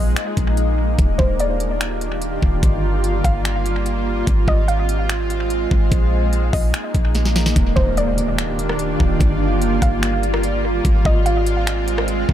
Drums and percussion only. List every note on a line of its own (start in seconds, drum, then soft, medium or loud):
0.16 finger snap loud
0.16 closed hi-hat medium
0.37 kick medium
0.37 closed hi-hat medium
0.57 closed hi-hat medium
0.99 kick loud
0.99 closed hi-hat medium
1.19 kick medium
1.39 closed hi-hat medium
1.60 closed hi-hat medium
1.81 finger snap loud
1.81 closed hi-hat medium
2.01 closed hi-hat medium
2.22 closed hi-hat medium
2.42 kick medium
2.63 kick loud
2.63 closed hi-hat medium
3.04 closed hi-hat medium
3.24 kick medium
3.24 closed hi-hat medium
3.45 finger snap loud
3.45 closed hi-hat medium
3.66 closed hi-hat medium
3.86 closed hi-hat medium
4.27 kick loud
4.27 closed hi-hat medium
4.48 kick medium
4.68 closed hi-hat medium
4.89 closed hi-hat medium
5.09 finger snap loud
5.09 closed hi-hat medium
5.30 closed hi-hat medium
5.50 closed hi-hat medium
5.71 kick medium
5.92 kick loud
5.92 closed hi-hat medium
6.33 closed hi-hat medium
6.53 kick medium
6.53 open hi-hat medium
6.74 finger snap loud
6.74 closed hi-hat medium
6.94 kick medium
6.94 closed hi-hat medium
7.15 snare medium
7.15 closed hi-hat medium
7.25 snare medium
7.36 snare medium
7.46 snare medium
7.56 kick loud
7.56 closed hi-hat medium
7.77 kick loud
7.97 closed hi-hat medium
8.18 closed hi-hat medium
8.38 finger snap loud
8.38 closed hi-hat medium
8.59 closed hi-hat medium
8.69 cross-stick medium
8.79 closed hi-hat medium
9.00 kick medium
9.20 kick loud
9.20 closed hi-hat medium
9.62 closed hi-hat medium
9.82 kick medium
9.82 closed hi-hat medium
10.03 finger snap loud
10.03 closed hi-hat medium
10.23 closed hi-hat medium
10.34 cross-stick loud
10.43 closed hi-hat medium
10.85 kick loud
10.85 closed hi-hat medium
11.05 kick loud
11.26 closed hi-hat medium
11.46 closed hi-hat medium
11.67 finger snap loud
11.67 closed hi-hat medium
11.88 closed hi-hat medium
11.98 cross-stick loud
12.08 closed hi-hat medium
12.29 kick medium